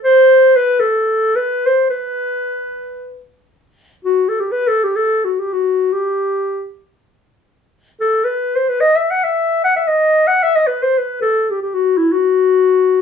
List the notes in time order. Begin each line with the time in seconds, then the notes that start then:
0.05 C5
0.56 B4
0.80 A4
1.36 B4
1.66 C5
1.90 B4
4.05 F#4
4.29 A4
4.40 G4
4.52 B4
4.68 A4
4.84 G4
4.96 A4
5.24 F#4
5.40 G4
5.53 F#4
5.93 G4
8.01 A4
8.25 B4
8.56 C5
8.69 B4
8.81 D#5
8.96 E5
9.11 F#5
9.24 E5
9.64 F#5
9.76 E5
9.87 D#5
10.27 F#5
10.43 E5
10.56 D#5
10.67 B4
10.83 C5
10.98 B4
11.22 A4
11.50 G4
11.62 G4
11.74 F#4
11.98 E4
12.12 F#4